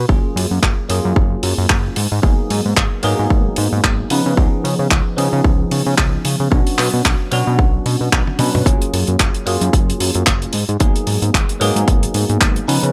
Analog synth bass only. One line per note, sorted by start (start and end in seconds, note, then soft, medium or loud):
0.09 0.20 F#1 medium
0.36 0.46 F#2 medium
0.51 0.59 F#2 medium
0.63 0.73 F#1 medium
0.90 1.00 F#2 medium
1.05 1.13 F#2 loud
1.16 1.36 F#1 medium
1.43 1.54 F#2 medium
1.58 1.66 F#2 loud
1.70 1.90 F#1 medium
1.97 2.07 G#2 medium
2.12 2.20 G#2 medium
2.23 2.34 G#1 loud
2.50 2.61 G#2 medium
2.65 2.74 G#2 medium
2.77 2.87 G#1 medium
3.04 3.14 G#2 medium
3.19 3.27 G#2 loud
3.31 3.50 G#1 medium
3.58 3.68 G#2 medium
3.72 3.81 G#2 medium
3.84 4.04 G#1 medium
4.11 4.21 C#3 medium
4.26 4.34 C#3 medium
4.37 4.48 C#2 medium
4.64 4.75 C#3 medium
4.79 4.88 C#3 medium
4.91 5.02 C#2 medium
5.18 5.28 C#3 medium
5.33 5.41 C#3 loud
5.45 5.65 C#2 medium
5.71 5.82 C#3 medium
5.86 5.95 C#3 medium
5.98 6.18 C#2 medium
6.25 6.36 C#3 medium
6.40 6.48 C#3 medium
6.52 6.62 B1 loud
6.79 6.89 B2 medium
6.94 7.02 B2 medium
7.05 7.16 B1 medium
7.32 7.43 B2 medium
7.47 7.60 B2 loud
7.59 7.79 B1 medium
7.86 7.96 B2 loud
8.01 8.09 B2 medium
8.12 8.23 B1 loud
8.39 8.50 B2 loud
8.55 8.63 B2 medium
8.66 8.77 F#1 loud
8.93 9.04 F#2 medium
9.08 9.16 F#2 medium
9.20 9.30 F#1 medium
9.47 9.57 F#2 medium
9.61 9.70 F#2 loud
9.73 9.93 F#1 medium
10.00 10.11 F#2 medium
10.15 10.24 F#2 loud
10.27 10.47 F#1 medium
10.54 10.64 G#2 medium
10.69 10.77 G#2 medium
10.81 10.91 G#1 loud
11.07 11.18 G#2 medium
11.22 11.31 G#2 medium
11.34 11.45 G#1 medium
11.61 11.72 G#2 medium
11.76 11.84 G#2 loud
11.88 12.08 G#1 medium
12.14 12.25 G#2 medium
12.29 12.38 G#2 loud
12.41 12.61 G#1 medium
12.68 12.79 C#3 medium
12.83 12.91 C#3 medium